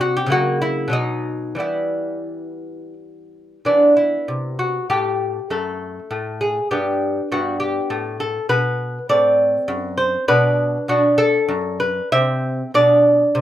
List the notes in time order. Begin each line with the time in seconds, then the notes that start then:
Already playing: C3 G3 C4
0.01 F#4
0.17 G4
0.26 C#3 F#3 A#3
0.32 F#4
0.62 E4
0.88 B2 F#3 B3
0.93 D#4
1.55 E3 G3 B3
1.60 E4
3.65 E3 B3 D4
3.97 E4
4.28 C3
4.59 F#4
4.90 A2 G4
5.50 F#2 A3 A4
6.11 A2
6.41 G#4
6.71 G2 B3 G4
7.32 G2 B3 F#4
7.60 G4
7.90 A2
8.20 A4
8.49 B2 B4
9.09 A2 C4 D5
9.68 F#2
9.97 C5
10.28 B2 D4 B4
10.88 B2 D4 F#4
11.18 A4
11.48 F#2
11.80 B4
12.12 C3 C4 E5
12.74 B2 D4 D5
13.35 C3